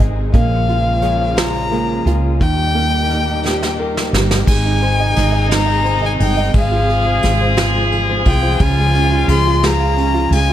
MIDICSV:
0, 0, Header, 1, 8, 480
1, 0, Start_track
1, 0, Key_signature, -4, "major"
1, 0, Tempo, 688073
1, 239, Time_signature, 6, 3, 24, 8
1, 7345, End_track
2, 0, Start_track
2, 0, Title_t, "Violin"
2, 0, Program_c, 0, 40
2, 236, Note_on_c, 0, 77, 88
2, 959, Note_on_c, 0, 82, 96
2, 969, Note_off_c, 0, 77, 0
2, 1441, Note_off_c, 0, 82, 0
2, 1678, Note_on_c, 0, 79, 126
2, 2613, Note_off_c, 0, 79, 0
2, 3122, Note_on_c, 0, 80, 106
2, 3815, Note_off_c, 0, 80, 0
2, 3858, Note_on_c, 0, 82, 91
2, 4186, Note_off_c, 0, 82, 0
2, 4225, Note_on_c, 0, 80, 82
2, 4274, Note_off_c, 0, 80, 0
2, 4339, Note_on_c, 0, 79, 94
2, 4556, Note_off_c, 0, 79, 0
2, 4585, Note_on_c, 0, 77, 92
2, 5267, Note_off_c, 0, 77, 0
2, 5768, Note_on_c, 0, 79, 95
2, 6007, Note_on_c, 0, 80, 107
2, 6017, Note_off_c, 0, 79, 0
2, 6484, Note_off_c, 0, 80, 0
2, 6490, Note_on_c, 0, 84, 108
2, 6737, Note_on_c, 0, 82, 96
2, 6747, Note_off_c, 0, 84, 0
2, 7208, Note_off_c, 0, 82, 0
2, 7214, Note_on_c, 0, 80, 93
2, 7345, Note_off_c, 0, 80, 0
2, 7345, End_track
3, 0, Start_track
3, 0, Title_t, "Felt piano"
3, 0, Program_c, 1, 0
3, 0, Control_c, 1, 64, 127
3, 0, Note_on_c, 1, 56, 58
3, 0, Note_on_c, 1, 63, 48
3, 0, Note_on_c, 1, 72, 54
3, 0, Note_on_c, 1, 75, 51
3, 210, Note_off_c, 1, 56, 0
3, 220, Note_off_c, 1, 72, 0
3, 230, Note_off_c, 1, 75, 0
3, 241, Note_on_c, 1, 58, 60
3, 246, Control_c, 1, 64, 0
3, 248, Note_off_c, 1, 63, 0
3, 352, Control_c, 1, 64, 127
3, 482, Note_on_c, 1, 65, 52
3, 712, Note_on_c, 1, 73, 50
3, 952, Note_off_c, 1, 65, 0
3, 963, Note_on_c, 1, 65, 56
3, 1187, Note_off_c, 1, 58, 0
3, 1198, Note_on_c, 1, 58, 55
3, 1432, Note_off_c, 1, 65, 0
3, 1443, Note_on_c, 1, 65, 53
3, 1650, Note_off_c, 1, 73, 0
3, 1666, Note_off_c, 1, 58, 0
3, 1675, Note_off_c, 1, 65, 0
3, 1679, Note_on_c, 1, 51, 67
3, 1691, Control_c, 1, 64, 0
3, 1804, Control_c, 1, 64, 127
3, 1918, Note_on_c, 1, 58, 51
3, 2162, Note_on_c, 1, 63, 50
3, 2401, Note_on_c, 1, 67, 54
3, 2645, Note_on_c, 1, 70, 57
3, 2854, Note_off_c, 1, 58, 0
3, 2878, Note_off_c, 1, 67, 0
3, 2889, Note_on_c, 1, 67, 51
3, 3095, Note_off_c, 1, 51, 0
3, 3096, Note_off_c, 1, 63, 0
3, 3111, Note_off_c, 1, 70, 0
3, 3119, Note_off_c, 1, 67, 0
3, 3122, Note_on_c, 1, 56, 60
3, 3131, Control_c, 1, 64, 0
3, 3241, Note_on_c, 1, 63, 50
3, 3243, Control_c, 1, 64, 127
3, 3365, Note_on_c, 1, 72, 57
3, 3483, Note_on_c, 1, 75, 56
3, 3587, Note_off_c, 1, 63, 0
3, 3598, Note_on_c, 1, 63, 54
3, 3702, Note_off_c, 1, 75, 0
3, 3712, Note_on_c, 1, 75, 55
3, 3819, Note_off_c, 1, 63, 0
3, 3829, Note_on_c, 1, 63, 66
3, 3938, Note_off_c, 1, 75, 0
3, 3949, Note_on_c, 1, 75, 50
3, 4064, Note_off_c, 1, 72, 0
3, 4075, Note_on_c, 1, 72, 54
3, 4190, Note_off_c, 1, 75, 0
3, 4201, Note_on_c, 1, 75, 55
3, 4311, Note_off_c, 1, 63, 0
3, 4322, Note_on_c, 1, 63, 55
3, 4432, Note_off_c, 1, 75, 0
3, 4442, Note_on_c, 1, 75, 57
3, 4536, Note_off_c, 1, 56, 0
3, 4545, Note_off_c, 1, 72, 0
3, 4556, Note_off_c, 1, 63, 0
3, 4557, Note_on_c, 1, 56, 63
3, 4560, Note_off_c, 1, 75, 0
3, 4572, Control_c, 1, 64, 0
3, 4681, Control_c, 1, 64, 127
3, 4684, Note_on_c, 1, 65, 52
3, 4803, Note_on_c, 1, 68, 58
3, 4922, Note_on_c, 1, 72, 50
3, 5037, Note_off_c, 1, 65, 0
3, 5047, Note_on_c, 1, 65, 49
3, 5158, Note_off_c, 1, 72, 0
3, 5169, Note_on_c, 1, 72, 56
3, 5269, Note_off_c, 1, 65, 0
3, 5280, Note_on_c, 1, 65, 71
3, 5396, Note_off_c, 1, 72, 0
3, 5406, Note_on_c, 1, 72, 53
3, 5516, Note_off_c, 1, 68, 0
3, 5526, Note_on_c, 1, 68, 55
3, 5636, Note_off_c, 1, 72, 0
3, 5646, Note_on_c, 1, 72, 58
3, 5752, Note_off_c, 1, 65, 0
3, 5762, Note_on_c, 1, 65, 54
3, 5868, Note_off_c, 1, 72, 0
3, 5878, Note_on_c, 1, 72, 59
3, 5972, Note_off_c, 1, 56, 0
3, 5990, Note_off_c, 1, 68, 0
3, 5995, Note_off_c, 1, 65, 0
3, 5997, Note_off_c, 1, 72, 0
3, 6000, Note_on_c, 1, 49, 67
3, 6011, Control_c, 1, 64, 0
3, 6122, Note_on_c, 1, 56, 54
3, 6129, Control_c, 1, 64, 127
3, 6244, Note_on_c, 1, 61, 57
3, 6362, Note_on_c, 1, 65, 55
3, 6471, Note_off_c, 1, 56, 0
3, 6482, Note_on_c, 1, 56, 50
3, 6594, Note_off_c, 1, 65, 0
3, 6604, Note_on_c, 1, 65, 54
3, 6707, Note_off_c, 1, 56, 0
3, 6717, Note_on_c, 1, 56, 75
3, 6837, Note_on_c, 1, 77, 51
3, 6945, Note_off_c, 1, 61, 0
3, 6956, Note_on_c, 1, 61, 58
3, 7063, Note_off_c, 1, 65, 0
3, 7074, Note_on_c, 1, 65, 60
3, 7199, Note_off_c, 1, 56, 0
3, 7209, Note_on_c, 1, 56, 54
3, 7309, Note_off_c, 1, 65, 0
3, 7320, Note_on_c, 1, 65, 59
3, 7345, Note_off_c, 1, 49, 0
3, 7345, Note_off_c, 1, 56, 0
3, 7345, Note_off_c, 1, 61, 0
3, 7345, Note_off_c, 1, 65, 0
3, 7345, Note_off_c, 1, 77, 0
3, 7345, End_track
4, 0, Start_track
4, 0, Title_t, "French horn section"
4, 0, Program_c, 2, 60
4, 3126, Note_on_c, 2, 63, 100
4, 4538, Note_off_c, 2, 63, 0
4, 4563, Note_on_c, 2, 68, 123
4, 6003, Note_off_c, 2, 68, 0
4, 6010, Note_on_c, 2, 65, 104
4, 7256, Note_off_c, 2, 65, 0
4, 7345, End_track
5, 0, Start_track
5, 0, Title_t, "Clean electric guitar"
5, 0, Program_c, 3, 27
5, 0, Note_on_c, 3, 63, 53
5, 0, Note_on_c, 3, 68, 47
5, 6, Note_on_c, 3, 60, 45
5, 13, Note_on_c, 3, 56, 46
5, 226, Note_on_c, 3, 46, 67
5, 229, Note_off_c, 3, 56, 0
5, 233, Note_off_c, 3, 68, 0
5, 233, Note_on_c, 3, 53, 65
5, 234, Note_off_c, 3, 60, 0
5, 237, Note_off_c, 3, 63, 0
5, 237, Note_on_c, 3, 56, 71
5, 240, Note_on_c, 3, 61, 74
5, 243, Note_on_c, 3, 68, 77
5, 463, Note_off_c, 3, 68, 0
5, 471, Note_on_c, 3, 68, 45
5, 473, Note_off_c, 3, 46, 0
5, 473, Note_off_c, 3, 61, 0
5, 477, Note_off_c, 3, 53, 0
5, 478, Note_off_c, 3, 56, 0
5, 482, Note_on_c, 3, 61, 39
5, 494, Note_on_c, 3, 56, 38
5, 711, Note_on_c, 3, 53, 56
5, 712, Note_off_c, 3, 56, 0
5, 716, Note_off_c, 3, 68, 0
5, 717, Note_off_c, 3, 61, 0
5, 720, Note_on_c, 3, 56, 62
5, 726, Note_on_c, 3, 61, 63
5, 733, Note_on_c, 3, 68, 66
5, 947, Note_off_c, 3, 68, 0
5, 953, Note_off_c, 3, 61, 0
5, 955, Note_on_c, 3, 68, 62
5, 956, Note_off_c, 3, 53, 0
5, 956, Note_off_c, 3, 56, 0
5, 961, Note_on_c, 3, 61, 62
5, 964, Note_on_c, 3, 56, 53
5, 966, Note_on_c, 3, 53, 63
5, 973, Note_on_c, 3, 46, 53
5, 1185, Note_off_c, 3, 53, 0
5, 1194, Note_off_c, 3, 56, 0
5, 1194, Note_on_c, 3, 53, 61
5, 1198, Note_off_c, 3, 68, 0
5, 1201, Note_off_c, 3, 61, 0
5, 1203, Note_on_c, 3, 56, 56
5, 1207, Note_off_c, 3, 46, 0
5, 1209, Note_on_c, 3, 61, 69
5, 1216, Note_on_c, 3, 68, 63
5, 1422, Note_off_c, 3, 68, 0
5, 1430, Note_on_c, 3, 68, 53
5, 1435, Note_off_c, 3, 61, 0
5, 1438, Note_off_c, 3, 53, 0
5, 1442, Note_off_c, 3, 56, 0
5, 1444, Note_on_c, 3, 61, 49
5, 1453, Note_on_c, 3, 56, 43
5, 1676, Note_off_c, 3, 68, 0
5, 1677, Note_on_c, 3, 51, 68
5, 1680, Note_off_c, 3, 56, 0
5, 1682, Note_on_c, 3, 58, 67
5, 1683, Note_off_c, 3, 61, 0
5, 1689, Note_on_c, 3, 63, 76
5, 1695, Note_on_c, 3, 67, 81
5, 1909, Note_off_c, 3, 67, 0
5, 1918, Note_on_c, 3, 67, 45
5, 1920, Note_off_c, 3, 51, 0
5, 1923, Note_off_c, 3, 58, 0
5, 1923, Note_off_c, 3, 63, 0
5, 1931, Note_on_c, 3, 63, 42
5, 1941, Note_on_c, 3, 58, 42
5, 2156, Note_on_c, 3, 51, 58
5, 2157, Note_off_c, 3, 58, 0
5, 2160, Note_off_c, 3, 67, 0
5, 2164, Note_off_c, 3, 63, 0
5, 2166, Note_on_c, 3, 58, 71
5, 2172, Note_on_c, 3, 63, 66
5, 2181, Note_on_c, 3, 67, 69
5, 2388, Note_off_c, 3, 67, 0
5, 2394, Note_off_c, 3, 63, 0
5, 2396, Note_on_c, 3, 67, 71
5, 2400, Note_off_c, 3, 51, 0
5, 2400, Note_off_c, 3, 58, 0
5, 2402, Note_on_c, 3, 63, 64
5, 2408, Note_on_c, 3, 58, 65
5, 2412, Note_on_c, 3, 51, 60
5, 2629, Note_off_c, 3, 51, 0
5, 2638, Note_off_c, 3, 58, 0
5, 2638, Note_on_c, 3, 51, 71
5, 2640, Note_off_c, 3, 67, 0
5, 2643, Note_off_c, 3, 63, 0
5, 2647, Note_on_c, 3, 58, 77
5, 2654, Note_on_c, 3, 63, 68
5, 2660, Note_on_c, 3, 67, 79
5, 2864, Note_off_c, 3, 67, 0
5, 2873, Note_on_c, 3, 67, 50
5, 2877, Note_off_c, 3, 63, 0
5, 2881, Note_off_c, 3, 51, 0
5, 2885, Note_off_c, 3, 58, 0
5, 2885, Note_on_c, 3, 63, 53
5, 2893, Note_on_c, 3, 58, 50
5, 3115, Note_on_c, 3, 44, 81
5, 3119, Note_off_c, 3, 67, 0
5, 3119, Note_on_c, 3, 51, 71
5, 3122, Note_off_c, 3, 63, 0
5, 3123, Note_off_c, 3, 58, 0
5, 3124, Note_on_c, 3, 56, 72
5, 3126, Note_on_c, 3, 60, 68
5, 3130, Note_on_c, 3, 63, 73
5, 3133, Note_on_c, 3, 68, 81
5, 3594, Note_off_c, 3, 56, 0
5, 3597, Note_on_c, 3, 56, 53
5, 3600, Note_off_c, 3, 44, 0
5, 3602, Note_off_c, 3, 51, 0
5, 3603, Note_off_c, 3, 60, 0
5, 3603, Note_off_c, 3, 63, 0
5, 3606, Note_on_c, 3, 60, 63
5, 3611, Note_on_c, 3, 63, 66
5, 3617, Note_off_c, 3, 68, 0
5, 3619, Note_on_c, 3, 68, 63
5, 3829, Note_off_c, 3, 68, 0
5, 3834, Note_off_c, 3, 63, 0
5, 3835, Note_off_c, 3, 60, 0
5, 3838, Note_on_c, 3, 68, 69
5, 3839, Note_off_c, 3, 56, 0
5, 3842, Note_on_c, 3, 63, 60
5, 3844, Note_on_c, 3, 60, 71
5, 3847, Note_on_c, 3, 56, 64
5, 3852, Note_on_c, 3, 51, 55
5, 3854, Note_on_c, 3, 44, 56
5, 4312, Note_off_c, 3, 68, 0
5, 4315, Note_off_c, 3, 63, 0
5, 4315, Note_on_c, 3, 68, 48
5, 4324, Note_on_c, 3, 63, 45
5, 4329, Note_off_c, 3, 44, 0
5, 4329, Note_off_c, 3, 51, 0
5, 4329, Note_off_c, 3, 60, 0
5, 4332, Note_on_c, 3, 60, 48
5, 4335, Note_off_c, 3, 56, 0
5, 4337, Note_on_c, 3, 56, 43
5, 4553, Note_off_c, 3, 56, 0
5, 4560, Note_off_c, 3, 68, 0
5, 4561, Note_off_c, 3, 60, 0
5, 4561, Note_on_c, 3, 56, 68
5, 4564, Note_off_c, 3, 63, 0
5, 4569, Note_on_c, 3, 60, 87
5, 4572, Note_on_c, 3, 65, 76
5, 4578, Note_on_c, 3, 68, 84
5, 5035, Note_off_c, 3, 56, 0
5, 5037, Note_off_c, 3, 60, 0
5, 5038, Note_on_c, 3, 56, 68
5, 5046, Note_on_c, 3, 60, 66
5, 5050, Note_off_c, 3, 65, 0
5, 5053, Note_on_c, 3, 65, 61
5, 5058, Note_off_c, 3, 68, 0
5, 5060, Note_on_c, 3, 68, 67
5, 5269, Note_off_c, 3, 68, 0
5, 5275, Note_off_c, 3, 65, 0
5, 5278, Note_on_c, 3, 68, 70
5, 5279, Note_off_c, 3, 60, 0
5, 5281, Note_off_c, 3, 56, 0
5, 5283, Note_on_c, 3, 65, 69
5, 5287, Note_on_c, 3, 60, 66
5, 5293, Note_on_c, 3, 56, 63
5, 5752, Note_off_c, 3, 68, 0
5, 5755, Note_on_c, 3, 68, 53
5, 5765, Note_off_c, 3, 60, 0
5, 5766, Note_off_c, 3, 65, 0
5, 5769, Note_on_c, 3, 65, 46
5, 5780, Note_on_c, 3, 60, 44
5, 5997, Note_on_c, 3, 49, 73
5, 5999, Note_off_c, 3, 56, 0
5, 5999, Note_off_c, 3, 68, 0
5, 6000, Note_off_c, 3, 65, 0
5, 6001, Note_on_c, 3, 53, 74
5, 6004, Note_off_c, 3, 60, 0
5, 6006, Note_on_c, 3, 56, 86
5, 6009, Note_on_c, 3, 65, 71
5, 6014, Note_on_c, 3, 68, 93
5, 6465, Note_off_c, 3, 53, 0
5, 6473, Note_on_c, 3, 53, 59
5, 6477, Note_off_c, 3, 56, 0
5, 6479, Note_off_c, 3, 49, 0
5, 6479, Note_off_c, 3, 65, 0
5, 6480, Note_on_c, 3, 56, 59
5, 6487, Note_on_c, 3, 65, 68
5, 6493, Note_off_c, 3, 68, 0
5, 6495, Note_on_c, 3, 68, 61
5, 6712, Note_off_c, 3, 68, 0
5, 6717, Note_off_c, 3, 53, 0
5, 6717, Note_off_c, 3, 65, 0
5, 6719, Note_off_c, 3, 56, 0
5, 6721, Note_on_c, 3, 68, 72
5, 6725, Note_on_c, 3, 65, 59
5, 6727, Note_on_c, 3, 56, 66
5, 6732, Note_on_c, 3, 53, 60
5, 6735, Note_on_c, 3, 49, 55
5, 7185, Note_off_c, 3, 68, 0
5, 7193, Note_on_c, 3, 68, 50
5, 7196, Note_off_c, 3, 65, 0
5, 7204, Note_off_c, 3, 56, 0
5, 7204, Note_on_c, 3, 65, 48
5, 7206, Note_off_c, 3, 53, 0
5, 7208, Note_off_c, 3, 49, 0
5, 7216, Note_on_c, 3, 56, 40
5, 7345, Note_off_c, 3, 56, 0
5, 7345, Note_off_c, 3, 65, 0
5, 7345, Note_off_c, 3, 68, 0
5, 7345, End_track
6, 0, Start_track
6, 0, Title_t, "String section"
6, 0, Program_c, 4, 48
6, 0, Note_on_c, 4, 48, 64
6, 0, Note_on_c, 4, 51, 57
6, 0, Note_on_c, 4, 56, 62
6, 0, Note_on_c, 4, 63, 61
6, 0, Note_on_c, 4, 68, 69
6, 224, Note_off_c, 4, 63, 0
6, 224, Note_off_c, 4, 68, 0
6, 226, Note_off_c, 4, 48, 0
6, 226, Note_off_c, 4, 51, 0
6, 228, Note_off_c, 4, 56, 0
6, 242, Note_on_c, 4, 58, 68
6, 245, Note_on_c, 4, 49, 63
6, 246, Note_on_c, 4, 53, 60
6, 247, Note_on_c, 4, 56, 64
6, 251, Note_on_c, 4, 65, 77
6, 1669, Note_off_c, 4, 58, 0
6, 1671, Note_off_c, 4, 49, 0
6, 1671, Note_off_c, 4, 53, 0
6, 1672, Note_off_c, 4, 56, 0
6, 1674, Note_off_c, 4, 65, 0
6, 1675, Note_on_c, 4, 51, 59
6, 1676, Note_on_c, 4, 46, 66
6, 1676, Note_on_c, 4, 63, 59
6, 1677, Note_on_c, 4, 67, 66
6, 1680, Note_on_c, 4, 55, 60
6, 3106, Note_off_c, 4, 51, 0
6, 3107, Note_off_c, 4, 46, 0
6, 3107, Note_off_c, 4, 63, 0
6, 3107, Note_off_c, 4, 67, 0
6, 3109, Note_off_c, 4, 55, 0
6, 3126, Note_on_c, 4, 51, 57
6, 3126, Note_on_c, 4, 56, 64
6, 3130, Note_on_c, 4, 48, 75
6, 3130, Note_on_c, 4, 63, 63
6, 3131, Note_on_c, 4, 68, 80
6, 4551, Note_off_c, 4, 51, 0
6, 4553, Note_off_c, 4, 63, 0
6, 4554, Note_off_c, 4, 68, 0
6, 4571, Note_on_c, 4, 65, 63
6, 4573, Note_on_c, 4, 53, 71
6, 4574, Note_on_c, 4, 68, 75
6, 5978, Note_off_c, 4, 48, 0
6, 6013, Note_on_c, 4, 49, 70
6, 7345, Note_off_c, 4, 49, 0
6, 7345, Note_off_c, 4, 53, 0
6, 7345, Note_off_c, 4, 56, 0
6, 7345, Note_off_c, 4, 65, 0
6, 7345, Note_off_c, 4, 68, 0
6, 7345, End_track
7, 0, Start_track
7, 0, Title_t, "Fretless electric bass"
7, 0, Program_c, 5, 35
7, 0, Note_on_c, 5, 32, 78
7, 224, Note_off_c, 5, 32, 0
7, 238, Note_on_c, 5, 34, 97
7, 1413, Note_off_c, 5, 34, 0
7, 1436, Note_on_c, 5, 37, 82
7, 1665, Note_off_c, 5, 37, 0
7, 1682, Note_on_c, 5, 39, 96
7, 2856, Note_off_c, 5, 39, 0
7, 2880, Note_on_c, 5, 31, 81
7, 3108, Note_off_c, 5, 31, 0
7, 3121, Note_on_c, 5, 32, 100
7, 3575, Note_off_c, 5, 32, 0
7, 3607, Note_on_c, 5, 32, 93
7, 4298, Note_off_c, 5, 32, 0
7, 4327, Note_on_c, 5, 31, 83
7, 4551, Note_off_c, 5, 31, 0
7, 4564, Note_on_c, 5, 32, 99
7, 5016, Note_off_c, 5, 32, 0
7, 5048, Note_on_c, 5, 32, 102
7, 5738, Note_off_c, 5, 32, 0
7, 5765, Note_on_c, 5, 36, 87
7, 5990, Note_off_c, 5, 36, 0
7, 6001, Note_on_c, 5, 37, 104
7, 6453, Note_off_c, 5, 37, 0
7, 6474, Note_on_c, 5, 37, 107
7, 7169, Note_off_c, 5, 37, 0
7, 7192, Note_on_c, 5, 37, 89
7, 7345, Note_off_c, 5, 37, 0
7, 7345, End_track
8, 0, Start_track
8, 0, Title_t, "Drums"
8, 236, Note_on_c, 9, 36, 102
8, 237, Note_on_c, 9, 42, 71
8, 305, Note_off_c, 9, 36, 0
8, 307, Note_off_c, 9, 42, 0
8, 482, Note_on_c, 9, 42, 41
8, 552, Note_off_c, 9, 42, 0
8, 713, Note_on_c, 9, 42, 72
8, 782, Note_off_c, 9, 42, 0
8, 955, Note_on_c, 9, 42, 70
8, 961, Note_on_c, 9, 38, 93
8, 1024, Note_off_c, 9, 42, 0
8, 1031, Note_off_c, 9, 38, 0
8, 1203, Note_on_c, 9, 42, 45
8, 1273, Note_off_c, 9, 42, 0
8, 1442, Note_on_c, 9, 42, 74
8, 1511, Note_off_c, 9, 42, 0
8, 1681, Note_on_c, 9, 36, 100
8, 1683, Note_on_c, 9, 42, 79
8, 1750, Note_off_c, 9, 36, 0
8, 1753, Note_off_c, 9, 42, 0
8, 1927, Note_on_c, 9, 42, 42
8, 1997, Note_off_c, 9, 42, 0
8, 2162, Note_on_c, 9, 42, 80
8, 2231, Note_off_c, 9, 42, 0
8, 2410, Note_on_c, 9, 38, 47
8, 2480, Note_off_c, 9, 38, 0
8, 2529, Note_on_c, 9, 38, 53
8, 2599, Note_off_c, 9, 38, 0
8, 2771, Note_on_c, 9, 38, 71
8, 2841, Note_off_c, 9, 38, 0
8, 2890, Note_on_c, 9, 38, 88
8, 2959, Note_off_c, 9, 38, 0
8, 3006, Note_on_c, 9, 38, 89
8, 3076, Note_off_c, 9, 38, 0
8, 3121, Note_on_c, 9, 36, 102
8, 3122, Note_on_c, 9, 49, 94
8, 3191, Note_off_c, 9, 36, 0
8, 3192, Note_off_c, 9, 49, 0
8, 3364, Note_on_c, 9, 51, 36
8, 3433, Note_off_c, 9, 51, 0
8, 3600, Note_on_c, 9, 51, 66
8, 3611, Note_on_c, 9, 38, 33
8, 3670, Note_off_c, 9, 51, 0
8, 3681, Note_off_c, 9, 38, 0
8, 3844, Note_on_c, 9, 51, 60
8, 3850, Note_on_c, 9, 38, 101
8, 3913, Note_off_c, 9, 51, 0
8, 3920, Note_off_c, 9, 38, 0
8, 4085, Note_on_c, 9, 51, 41
8, 4155, Note_off_c, 9, 51, 0
8, 4327, Note_on_c, 9, 51, 60
8, 4397, Note_off_c, 9, 51, 0
8, 4560, Note_on_c, 9, 51, 65
8, 4564, Note_on_c, 9, 36, 114
8, 4630, Note_off_c, 9, 51, 0
8, 4634, Note_off_c, 9, 36, 0
8, 4811, Note_on_c, 9, 51, 38
8, 4881, Note_off_c, 9, 51, 0
8, 5041, Note_on_c, 9, 51, 69
8, 5052, Note_on_c, 9, 38, 35
8, 5111, Note_off_c, 9, 51, 0
8, 5122, Note_off_c, 9, 38, 0
8, 5279, Note_on_c, 9, 51, 60
8, 5285, Note_on_c, 9, 38, 90
8, 5349, Note_off_c, 9, 51, 0
8, 5355, Note_off_c, 9, 38, 0
8, 5525, Note_on_c, 9, 51, 43
8, 5594, Note_off_c, 9, 51, 0
8, 5757, Note_on_c, 9, 51, 64
8, 5763, Note_on_c, 9, 36, 87
8, 5827, Note_off_c, 9, 51, 0
8, 5833, Note_off_c, 9, 36, 0
8, 5997, Note_on_c, 9, 51, 67
8, 6001, Note_on_c, 9, 36, 101
8, 6067, Note_off_c, 9, 51, 0
8, 6071, Note_off_c, 9, 36, 0
8, 6241, Note_on_c, 9, 51, 41
8, 6311, Note_off_c, 9, 51, 0
8, 6477, Note_on_c, 9, 51, 67
8, 6547, Note_off_c, 9, 51, 0
8, 6717, Note_on_c, 9, 51, 56
8, 6723, Note_on_c, 9, 38, 90
8, 6787, Note_off_c, 9, 51, 0
8, 6793, Note_off_c, 9, 38, 0
8, 6962, Note_on_c, 9, 51, 40
8, 7032, Note_off_c, 9, 51, 0
8, 7201, Note_on_c, 9, 51, 64
8, 7270, Note_off_c, 9, 51, 0
8, 7345, End_track
0, 0, End_of_file